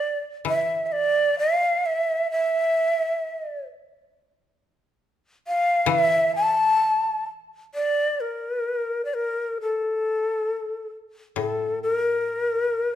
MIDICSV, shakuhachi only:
0, 0, Header, 1, 2, 480
1, 0, Start_track
1, 0, Tempo, 931677
1, 235, Time_signature, 2, 2, 24, 8
1, 715, Tempo, 900901
1, 3115, Tempo, 927357
1, 4555, Tempo, 899550
1, 6838, End_track
2, 0, Start_track
2, 0, Title_t, "Shakuhachi"
2, 0, Program_c, 0, 77
2, 0, Note_on_c, 0, 74, 92
2, 101, Note_off_c, 0, 74, 0
2, 249, Note_on_c, 0, 76, 84
2, 443, Note_off_c, 0, 76, 0
2, 443, Note_on_c, 0, 76, 54
2, 475, Note_on_c, 0, 74, 88
2, 483, Note_off_c, 0, 76, 0
2, 713, Note_off_c, 0, 74, 0
2, 716, Note_on_c, 0, 77, 93
2, 965, Note_on_c, 0, 76, 85
2, 973, Note_off_c, 0, 77, 0
2, 1199, Note_off_c, 0, 76, 0
2, 1208, Note_on_c, 0, 76, 93
2, 1899, Note_off_c, 0, 76, 0
2, 2893, Note_on_c, 0, 77, 81
2, 3114, Note_on_c, 0, 76, 91
2, 3122, Note_off_c, 0, 77, 0
2, 3350, Note_off_c, 0, 76, 0
2, 3358, Note_on_c, 0, 81, 87
2, 3813, Note_off_c, 0, 81, 0
2, 4075, Note_on_c, 0, 74, 81
2, 4312, Note_on_c, 0, 70, 67
2, 4320, Note_off_c, 0, 74, 0
2, 4752, Note_off_c, 0, 70, 0
2, 4755, Note_on_c, 0, 74, 43
2, 4803, Note_on_c, 0, 70, 68
2, 4811, Note_off_c, 0, 74, 0
2, 5041, Note_off_c, 0, 70, 0
2, 5055, Note_on_c, 0, 69, 63
2, 5742, Note_off_c, 0, 69, 0
2, 6000, Note_on_c, 0, 69, 59
2, 6219, Note_off_c, 0, 69, 0
2, 6239, Note_on_c, 0, 70, 73
2, 6838, Note_off_c, 0, 70, 0
2, 6838, End_track
0, 0, End_of_file